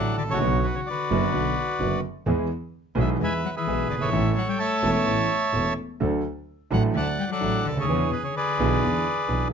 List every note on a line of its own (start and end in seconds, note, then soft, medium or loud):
0.00 0.15 A1 soft
0.00 0.15 A2 soft
0.00 0.15 D3 soft
0.00 0.15 F#3 soft
0.00 0.16 F#3 medium
0.00 0.15 A3 soft
0.00 0.15 F#4 soft
0.00 0.39 A4 medium
0.00 0.16 D5 medium
0.00 0.17 F#5 medium
0.17 0.42 A1 soft
0.17 0.23 D3 medium
0.17 0.23 D5 medium
0.25 0.31 G#1 soft
0.25 0.62 C#3 medium
0.29 0.36 A1 medium
0.29 0.66 C#5 medium
0.34 0.41 A#1 medium
0.34 0.89 F#4 medium
0.40 0.61 B1 medium
0.40 0.62 B1 medium
0.40 0.61 B2 medium
0.40 0.61 D3 medium
0.40 0.61 F#3 medium
0.40 0.61 B3 medium
0.40 0.61 F#4 medium
0.63 0.74 B2 medium
0.63 0.75 B4 medium
0.75 0.81 C#3 medium
0.75 0.81 C#5 medium
0.86 1.99 D3 medium
0.86 2.01 F#4 medium
0.86 2.01 B4 medium
0.86 1.99 D5 medium
1.11 1.31 F#1 medium
1.11 1.31 F#2 medium
1.11 1.31 D3 medium
1.11 1.31 F#3 medium
1.11 1.31 B3 medium
1.11 1.31 F#4 medium
1.32 1.53 B1 soft
1.32 1.54 B1 medium
1.32 1.53 B2 medium
1.32 1.53 D3 soft
1.32 1.53 F#3 soft
1.32 1.53 B3 soft
1.32 1.53 F#4 soft
1.80 2.00 F#1 medium
1.80 2.00 F#1 soft
1.80 2.00 F#2 soft
1.80 2.00 D3 soft
1.80 2.00 F#3 soft
1.80 2.00 B3 soft
1.80 2.00 F#4 soft
2.26 2.46 E2 medium
2.26 2.46 E3 medium
2.26 2.46 G#3 medium
2.26 2.46 B3 medium
2.26 2.46 G#4 medium
2.95 3.15 B1 medium
2.95 3.16 B1 medium
2.95 3.16 B2 medium
2.95 3.15 E3 medium
2.95 3.09 E3 medium
2.95 3.15 G#3 medium
2.95 3.15 B3 medium
2.95 3.16 G#4 medium
3.00 3.10 E5 medium
3.19 3.39 E2 medium
3.19 3.39 E2 soft
3.19 3.39 E3 soft
3.19 3.39 G#3 soft
3.19 3.31 G#3 medium
3.19 3.40 B3 soft
3.19 3.40 G#4 soft
3.23 3.55 B4 medium
3.23 3.56 E5 medium
3.23 3.33 G#5 medium
3.44 3.49 F#3 medium
3.44 3.50 F#5 medium
3.56 3.88 E3 medium
3.56 4.10 G#4 soft
3.56 4.10 B4 soft
3.56 3.88 E5 medium
3.66 3.86 B1 medium
3.66 3.86 B1 soft
3.66 3.86 B2 soft
3.66 3.86 E3 soft
3.66 3.86 G#3 soft
3.66 3.87 B3 soft
3.66 3.87 G#4 soft
3.89 4.12 G1 soft
3.89 3.95 D3 medium
3.89 3.95 D5 medium
3.97 4.02 F#1 soft
3.97 4.34 E5 medium
4.01 4.08 G1 medium
4.01 4.35 E3 medium
4.01 4.91 A4 medium
4.01 4.58 C#5 medium
4.09 4.14 G#1 medium
4.09 4.32 A1 medium
4.09 4.32 A2 medium
4.09 4.32 E3 medium
4.09 4.32 A3 medium
4.09 4.32 C#4 medium
4.13 4.33 A4 medium
4.36 4.45 F#3 medium
4.36 4.48 F#5 medium
4.46 4.58 G3 medium
4.46 4.59 G5 medium
4.59 5.74 A3 medium
4.59 5.73 C#5 medium
4.59 5.74 E5 medium
4.59 5.73 A5 medium
4.82 5.03 E1 medium
4.82 5.03 E2 medium
4.82 5.03 E3 medium
4.82 5.03 A3 medium
4.82 5.03 C#4 medium
4.82 5.03 A4 medium
5.06 5.26 A1 soft
5.06 5.26 A2 soft
5.06 5.26 E3 soft
5.06 5.26 A3 soft
5.06 5.26 C#4 soft
5.06 5.27 A4 soft
5.53 5.73 E1 soft
5.53 5.74 E1 medium
5.53 5.73 E2 soft
5.53 5.73 E3 soft
5.53 5.73 A3 soft
5.53 5.73 C#4 soft
5.53 5.73 A4 soft
6.00 6.21 D2 medium
6.00 6.21 D3 medium
6.00 6.20 F#3 medium
6.00 6.21 A3 medium
6.00 6.21 D4 soft
6.00 6.21 A4 medium
6.70 6.91 A1 medium
6.70 6.92 A1 medium
6.70 6.91 A2 medium
6.70 6.91 F#3 medium
6.70 6.83 F#3 medium
6.70 6.91 A3 medium
6.70 6.91 D4 medium
6.70 6.91 A4 medium
6.70 6.83 F#5 medium
6.94 7.15 D2 soft
6.94 7.16 D2 medium
6.94 7.15 D3 soft
6.94 7.15 F#3 soft
6.94 7.05 A3 medium
6.94 7.15 A3 soft
6.94 7.15 D4 soft
6.94 7.15 A4 soft
6.94 7.30 D5 medium
6.94 7.31 F#5 medium
6.94 7.08 A5 medium
7.19 7.24 G3 medium
7.19 7.25 G5 medium
7.28 7.62 F#3 medium
7.28 7.86 A4 medium
7.28 7.66 D5 medium
7.28 7.67 F#5 medium
7.41 7.61 A1 soft
7.41 7.62 A1 medium
7.41 7.61 A2 soft
7.41 7.61 F#3 soft
7.41 7.62 A3 soft
7.41 7.61 D4 soft
7.41 7.62 A4 soft
7.64 7.88 D2 soft
7.64 7.74 D3 medium
7.64 7.78 D5 medium
7.70 7.77 C#2 soft
7.75 7.83 D2 medium
7.75 8.08 C#3 medium
7.80 7.89 D#2 medium
7.80 8.35 G#4 medium
7.80 8.11 C#5 medium
7.88 8.08 E2 medium
7.88 8.08 E3 medium
7.88 8.08 B3 medium
7.88 8.08 D4 medium
7.88 8.09 G#4 medium
8.09 8.21 B2 medium
8.09 8.23 B4 medium
8.22 8.32 C#3 medium
8.22 8.35 C#5 medium
8.33 9.46 D3 medium
8.33 9.48 B4 medium
8.33 9.48 D5 medium
8.37 9.48 G#4 medium
8.59 8.78 B1 medium
8.59 8.79 B1 medium
8.59 8.79 B2 medium
8.59 8.79 E3 medium
8.59 8.79 B3 medium
8.59 8.79 D4 medium
8.59 8.79 G#4 medium
8.82 9.01 E2 medium
8.82 9.02 E2 soft
8.82 9.02 E3 soft
8.82 9.02 B3 soft
8.82 9.02 D4 soft
8.82 9.02 G#4 soft
9.28 9.48 B1 medium
9.28 9.48 B1 soft
9.28 9.48 B2 medium
9.28 9.48 E3 soft
9.28 9.48 B3 soft
9.28 9.48 D4 soft
9.28 9.48 G#4 soft